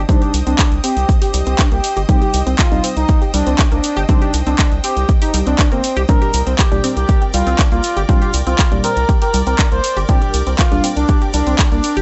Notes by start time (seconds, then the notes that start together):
Already playing: C5 D#5 G5 D#6
0.09 C3 G3 C4 D4 D#4, kick, closed hi-hat, shaker
0.22 G4, closed hi-hat, shaker
0.34 C2, open hi-hat, shaker
0.47 C2 C4 D4, closed hi-hat, shaker
0.59 kick, clap, closed hi-hat, shaker
0.72 C2, closed hi-hat, shaker
0.84 C4 G4, open hi-hat, shaker
0.97 C2, closed hi-hat, shaker
1.09 kick, closed hi-hat, shaker
1.22 G4, open hi-hat, shaker
1.34 C2 G3, open hi-hat, shaker
1.46 C2 C4 G4, closed hi-hat, shaker
1.58 D4, kick, clap, closed hi-hat, shaker
1.71 C2 A#3 G4, closed hi-hat, shaker
1.84 open hi-hat, shaker
1.96 G1 G4, closed hi-hat, shaker
2.09 C3 G3 C4 D#4 G4, kick, closed hi-hat, shaker
2.22 G4, closed hi-hat, shaker
2.33 C2, open hi-hat, shaker
2.47 C2 C4, closed hi-hat, shaker
2.59 F4, kick, clap, closed hi-hat, shaker
2.72 C2 C3 G3 D#4, closed hi-hat, shaker
2.84 C4, open hi-hat, shaker
2.97 C2 D#4, closed hi-hat, shaker
3.08 kick, closed hi-hat, shaker
3.22 G4, closed hi-hat, shaker
3.34 C2 G3 D4, open hi-hat, shaker
3.47 C2 C4, closed hi-hat, shaker
3.59 D4, kick, clap, closed hi-hat, shaker
3.71 C2 A#3 D4, closed hi-hat, shaker
3.84 open hi-hat, shaker
3.97 G1 G4, closed hi-hat, shaker
4.09 C3 G3 C4 D4 D#4, kick, closed hi-hat, shaker
4.21 G4, closed hi-hat, shaker
4.34 C2, open hi-hat, shaker
4.46 C2 C4 D4, closed hi-hat, shaker
4.58 kick, clap, closed hi-hat, shaker
4.71 C2, closed hi-hat, shaker
4.84 C4 G4, open hi-hat, shaker
4.97 C2, closed hi-hat, shaker
5.08 kick, closed hi-hat, shaker
5.22 D#4 G4, open hi-hat, shaker
5.34 C2 G3, open hi-hat, shaker
5.46 C2 C4 D4, closed hi-hat, shaker
5.59 D4, kick, clap, closed hi-hat, shaker
5.71 G1 A#3 C4, closed hi-hat, shaker
5.84 open hi-hat, shaker
5.96 C2 G4, closed hi-hat, shaker
6.08 A#2 G3 C4 D4 A#4 D5 D6, kick, closed hi-hat, shaker
6.22 G4, closed hi-hat, shaker
6.33 C2, open hi-hat, shaker
6.47 C2 C4, closed hi-hat, shaker
6.59 G4, kick, clap, closed hi-hat
6.72 C2 A#2 G3 D4, closed hi-hat, shaker
6.84 C4, open hi-hat, shaker
6.97 C2 G4, closed hi-hat, shaker
7.08 G4, kick, closed hi-hat, shaker
7.21 G4, closed hi-hat, shaker
7.33 C2 G3 F4, open hi-hat, shaker
7.47 C2 C4, closed hi-hat, shaker
7.59 D4, kick, clap, closed hi-hat, shaker
7.72 C2 A#3 F4, closed hi-hat, shaker
7.83 open hi-hat, shaker
7.97 G1 G4, closed hi-hat, shaker
8.09 A#2 G3 C4 D4 F4, kick, closed hi-hat, shaker
8.22 G4, closed hi-hat, shaker
8.33 C2, open hi-hat, shaker
8.47 C2 C4 F4, closed hi-hat, shaker
8.59 kick, clap, closed hi-hat, shaker
8.72 C2 A#2 G3 D4, closed hi-hat, shaker
8.84 C4 A#4, open hi-hat, shaker
8.96 C2, closed hi-hat, shaker
9.09 G4, kick, closed hi-hat, shaker
9.22 G4 A#4, open hi-hat, shaker
9.34 C2 G3, open hi-hat, shaker
9.47 C2 C4 A#4, closed hi-hat, shaker
9.59 D4, kick, clap, closed hi-hat
9.72 C2 A#3 C5, closed hi-hat, shaker
9.84 open hi-hat, shaker
9.97 G1 G4, closed hi-hat, shaker
10.08 A#2 G3 C4 D4 G4, kick, closed hi-hat, shaker
10.21 G4, closed hi-hat, shaker
10.34 C2, open hi-hat, shaker
10.47 C2 C4, closed hi-hat, shaker
10.59 F4, kick, clap, closed hi-hat, shaker
10.72 C2 A#2 G3 D4, closed hi-hat, shaker
10.84 C4, open hi-hat, shaker
10.96 C2 D4, closed hi-hat, shaker
11.08 G4, kick, closed hi-hat, shaker
11.21 G4, closed hi-hat, shaker
11.33 C2 G3 D4, open hi-hat, shaker
11.46 C2 C4, closed hi-hat, shaker
11.59 D4, kick, clap, closed hi-hat, shaker
11.72 C2 A#3 D4, closed hi-hat, shaker
11.83 open hi-hat, shaker
11.97 G1 G4, closed hi-hat, shaker